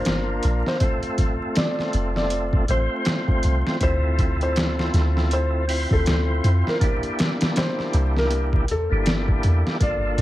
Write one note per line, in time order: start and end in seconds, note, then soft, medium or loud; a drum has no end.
0.00 0.40 G1 medium
0.00 0.77 A#3 medium
0.00 0.77 D4 medium
0.00 0.78 F4 medium
0.00 0.78 A#4 loud
0.00 0.58 C5 medium
0.05 snare loud
0.05 closed hi-hat medium
0.43 0.63 A#1 medium
0.43 closed hi-hat medium
0.66 1.00 C5 medium
0.66 snare soft
0.80 2.64 A3 medium
0.80 2.65 C4 medium
0.80 2.65 F4 medium
0.80 2.66 A4 medium
0.80 kick medium
0.80 closed hi-hat medium
1.03 closed hi-hat soft
1.18 kick medium
1.18 closed hi-hat medium
1.55 2.10 D5 medium
1.55 snare loud
1.55 closed hi-hat medium
1.79 snare soft
1.93 2.66 F1 medium
1.93 closed hi-hat medium
2.16 2.64 D5 medium
2.16 snare soft
2.30 closed hi-hat medium
2.53 kick medium
2.68 2.88 A1 medium
2.68 3.77 A3 medium
2.68 3.78 C4 medium
2.68 3.78 F4 medium
2.68 3.70 C5 medium
2.68 3.79 C5 loud
2.68 closed hi-hat medium
3.05 snare loud
3.05 closed hi-hat medium
3.28 kick medium
3.43 3.63 C2 medium
3.43 closed hi-hat medium
3.67 snare soft
3.80 4.90 D2 medium
3.80 5.64 C4 medium
3.80 5.65 E4 medium
3.80 5.65 F4 medium
3.80 5.66 A4 loud
3.80 4.35 C5 loud
3.80 kick loud
3.80 closed hi-hat medium
4.18 kick medium
4.18 closed hi-hat medium
4.41 4.90 C5 medium
4.41 closed hi-hat soft
4.56 snare loud
4.56 closed hi-hat medium
4.79 snare soft
4.94 5.86 D2 medium
4.94 snare soft
4.94 closed hi-hat medium
5.17 snare soft
5.31 5.85 C5 medium
5.31 closed hi-hat medium
5.68 6.77 C4 medium
5.68 6.77 E4 medium
5.68 6.78 F4 medium
5.68 6.78 C5 medium
5.68 open hi-hat medium
5.91 6.41 D2 medium
5.91 6.58 A4 medium
5.91 kick medium
6.06 snare loud
6.06 closed hi-hat medium
6.44 6.63 F2 medium
6.44 closed hi-hat medium
6.67 7.00 A#4 medium
6.67 snare soft
6.80 8.64 A#3 medium
6.80 8.65 D4 medium
6.80 8.65 E4 medium
6.80 8.66 G4 loud
6.80 kick loud
6.80 closed hi-hat medium
7.03 closed hi-hat soft
7.19 snare loud
7.19 closed hi-hat medium
7.41 snare medium
7.41 closed hi-hat medium
7.56 8.10 C5 medium
7.56 snare loud
7.56 closed hi-hat medium
7.79 snare soft
7.93 8.71 C2 medium
7.93 closed hi-hat medium
8.17 8.65 A#4 medium
8.17 snare soft
8.31 closed hi-hat medium
8.53 kick medium
8.68 8.88 E2 medium
8.68 9.70 A4 medium
8.68 closed hi-hat medium
8.90 9.41 G1 medium
8.90 9.77 A#3 medium
8.90 9.77 D4 medium
8.90 9.78 E4 medium
8.90 9.78 G4 medium
9.06 snare loud
9.06 closed hi-hat medium
9.28 kick medium
9.43 9.63 E2 medium
9.43 closed hi-hat medium
9.67 snare soft
9.80 10.22 G1 medium
9.80 10.22 A#3 medium
9.80 10.22 D4 medium
9.80 10.22 F4 medium
9.80 10.22 A4 loud
9.80 10.22 D5 medium
9.80 kick medium
9.80 closed hi-hat medium
10.18 kick medium
10.18 closed hi-hat medium